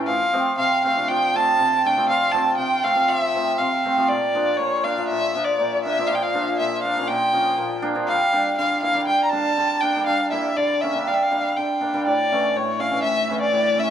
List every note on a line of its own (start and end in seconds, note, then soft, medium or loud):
0.00 0.11 A2 medium
0.00 0.11 E3 medium
0.07 0.32 F3 medium
0.07 0.53 F5 loud
0.33 0.62 F3 medium
0.33 0.45 A3 medium
0.33 0.45 C4 medium
0.57 1.58 C3 medium
0.57 0.81 F5 loud
0.85 0.90 A3 medium
0.85 0.89 C4 medium
0.85 1.10 F5 medium
0.96 1.09 F3 medium
0.96 1.08 A3 medium
0.96 1.08 D4 medium
1.08 1.33 F3 medium
1.08 1.38 G5 loud
1.34 1.62 F3 medium
1.34 1.46 A3 medium
1.34 1.46 C4 medium
1.34 1.88 A5 loud
1.59 2.57 C3 medium
1.85 1.90 A3 medium
1.85 1.90 D4 medium
1.85 2.08 G5 loud
1.97 2.08 F3 medium
1.97 2.08 A3 medium
1.97 2.08 C4 medium
2.09 2.33 F3 medium
2.09 2.33 F5 loud
2.32 2.63 F3 medium
2.32 2.46 A3 medium
2.32 2.46 C4 medium
2.32 2.57 A5 medium
2.57 3.58 C3 medium
2.57 2.85 G5 medium
2.83 2.89 A3 medium
2.83 2.90 C4 medium
2.83 3.08 F5 loud
2.95 3.06 F3 medium
2.95 3.08 A3 soft
2.95 3.08 C4 medium
3.07 3.34 F3 medium
3.07 3.19 F5 loud
3.19 3.59 E5 loud
3.35 3.63 F3 medium
3.35 3.47 A3 soft
3.35 3.47 C4 medium
3.58 4.13 C3 medium
3.58 4.10 F5 medium
3.85 3.91 A3 medium
3.85 3.90 C4 medium
3.97 4.13 F3 medium
3.97 4.09 A3 medium
3.97 4.09 C4 medium
4.08 4.58 A#2 medium
4.08 4.59 D5 medium
4.35 4.97 F3 medium
4.35 4.47 A#3 medium
4.35 4.47 D4 medium
4.57 5.09 A#2 medium
4.57 4.85 C#5 medium
4.84 4.90 A#3 medium
4.84 4.91 D4 medium
4.84 5.08 F5 medium
4.98 5.34 F3 medium
4.98 5.10 A#3 soft
4.98 5.10 D4 medium
5.08 5.58 A#2 medium
5.08 5.46 E5 medium
5.35 5.98 F3 medium
5.35 5.47 A#3 medium
5.35 5.47 D4 medium
5.45 5.83 D5 medium
5.60 6.09 A#2 medium
5.84 5.91 A#3 medium
5.84 5.91 D4 medium
5.84 6.09 E5 medium
5.99 6.33 F3 medium
5.99 6.10 A#3 medium
5.99 6.10 D4 medium
6.07 6.59 A#2 medium
6.07 6.17 F5 medium
6.15 6.24 G5 medium
6.23 6.58 F5 medium
6.34 6.96 F3 medium
6.34 6.47 A#3 medium
6.34 6.47 D4 medium
6.59 7.08 A#2 medium
6.59 6.82 E5 medium
6.83 6.90 A#3 medium
6.83 6.90 D4 medium
6.83 7.10 F5 medium
6.97 7.32 F3 medium
6.97 7.09 A#3 medium
6.97 7.10 C#4 medium
7.08 7.56 A#2 medium
7.08 7.83 G5 loud
7.33 7.94 F3 medium
7.33 7.46 A#3 medium
7.33 7.46 C#4 medium
7.58 8.14 A#2 medium
7.82 7.89 A#3 medium
7.82 7.89 D4 loud
7.95 8.14 F3 medium
7.95 8.08 A#3 medium
7.95 8.08 D4 medium
8.07 8.31 G3 medium
8.07 8.54 F5 loud
8.33 8.63 G3 medium
8.33 8.46 A#3 medium
8.33 8.46 D4 medium
8.58 9.56 D3 medium
8.58 8.81 F5 medium
8.82 8.89 A#3 medium
8.82 8.89 E4 medium
8.82 9.06 F5 loud
8.94 9.05 G3 medium
8.94 9.07 A#3 medium
8.94 9.08 D4 medium
9.06 9.30 G3 medium
9.06 9.23 G5 loud
9.24 9.31 A#5 medium
9.29 9.63 G3 medium
9.29 9.45 A#3 medium
9.29 9.45 D4 medium
9.29 9.82 A5 loud
9.58 10.56 D3 medium
9.81 9.89 A#3 medium
9.81 9.89 D4 medium
9.81 10.06 G5 loud
9.95 10.06 G3 medium
9.95 10.08 A#3 medium
9.95 10.08 D4 medium
10.06 10.31 G3 medium
10.06 10.30 F5 medium
10.32 10.62 G3 medium
10.32 10.45 A#3 medium
10.32 10.45 E4 medium
10.32 10.58 E5 medium
10.57 11.56 D3 medium
10.57 10.82 D5 medium
10.81 10.89 A#3 medium
10.81 10.89 C#4 medium
10.81 11.09 E5 medium
10.95 11.06 G3 medium
10.95 11.07 A#3 soft
10.95 11.07 D4 medium
11.07 11.30 G3 medium
11.07 11.15 F5 medium
11.14 11.24 E5 medium
11.23 11.58 F5 medium
11.31 11.61 G3 medium
11.31 11.44 A#3 medium
11.31 11.44 D4 medium
11.56 12.11 D3 medium
11.56 12.06 G5 medium
11.81 11.87 A#3 medium
11.81 11.87 D4 medium
11.94 12.11 G3 medium
11.94 12.06 A#3 medium
11.94 12.06 D4 medium
12.07 12.55 A2 medium
12.07 12.58 D5 medium
12.32 12.90 E3 medium
12.32 12.44 A3 medium
12.32 12.44 C#4 medium
12.56 13.03 A2 medium
12.56 12.82 C#5 medium
12.79 12.86 A3 medium
12.79 12.86 C#4 medium
12.79 13.03 F5 medium
12.91 13.28 E3 medium
12.91 13.04 A3 medium
12.91 13.04 C#4 medium
13.03 13.52 A2 medium
13.03 13.38 E5 medium
13.29 13.89 E3 medium
13.29 13.42 A3 medium
13.29 13.42 C#4 medium
13.41 13.80 D5 loud
13.53 13.90 A2 medium
13.77 13.84 A3 medium
13.77 13.84 C#4 medium
13.77 13.90 E5 medium